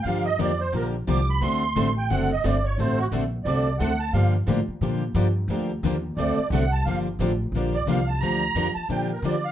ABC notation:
X:1
M:4/4
L:1/16
Q:"Swing" 1/4=177
K:Gm
V:1 name="Accordion"
f2 e2 d2 c2 B2 z2 d'2 =b2 | c'6 g2 ^f2 e2 d2 ^c2 | c2 ^F2 z4 d4 ^f2 a2 | f2 z12 z2 |
z8 d4 ^f2 a2 | f2 z8 d2 f2 a2 | b6 a2 g2 B2 d2 f2 |]
V:2 name="Steel-string acoustic guitar"
[D,F,B,DG]2 z2 [D,F,B,DG] z3 [D,F,B,DG]2 z2 [D,F,B,DG] z3 | [D,A,C^FA]2 z2 [D,A,CFA] z3 [D,A,CFA]2 z2 [D,A,CFA] z3 | [D,A,C^FA]2 z2 [D,A,CFA] z3 [D,A,CFA]2 z2 [D,A,CFA] z3 | [D,F,B,DG]2 z2 [D,F,B,DG] z3 [D,F,B,DG]2 z2 [D,F,B,DG] z3 |
[D,F,B,DG]2 z2 [D,F,B,DG] z3 [D,A,C^FA]2 z2 [D,A,CFA] z3 | [D,F,B,DG]2 z2 [D,F,B,DG] z3 [D,F,B,DG]2 z2 [D,F,B,DG] z3 | [D,F,B,DG]2 z2 [D,F,B,DG] z3 [D,F,B,DG]2 z2 [D,F,B,DG] z3 |]
V:3 name="Steel-string acoustic guitar"
[D,F,B,DG]2 z2 [D,F,B,DG] z3 [D,F,B,DG]2 z2 [D,F,B,DG] z3 | [D,A,C^FA]2 z2 [D,A,CFA] z3 [D,A,CFA]2 z2 [D,A,CFA] z3 | [D,A,C^FA]2 z2 [D,A,CFA] z3 [D,A,CFA]2 z2 [D,A,CFA] z3 | [D,F,B,DG]2 z2 [D,F,B,DG] z3 [D,F,B,DG]2 z2 [D,F,B,DG] z3 |
[D,F,B,DG]2 z2 [D,F,B,DG] z3 [D,A,C^FA]2 z2 [D,A,CFA] z3 | [D,F,B,DG]2 z2 [D,F,B,DG] z3 [D,F,B,DG]2 z2 [D,F,B,DG] z3 | [D,F,B,DG]2 z2 [D,F,B,DG] z3 [D,F,B,DG]2 z2 [D,F,B,DG] z3 |]
V:4 name="Upright bass" clef=bass
G,,4 F,,4 B,,,4 C,,4 | D,,4 A,,,4 ^F,,,4 G,,,4 | A,,,4 B,,,4 C,,4 D,,4 | G,,4 A,,2 z2 B,,4 G,,4 |
D,,4 E,,4 D,,2 z2 C,,4 | G,,,4 A,,,4 B,,,4 C,,4 | D,,4 F,,2 z2 B,,4 D,4 |]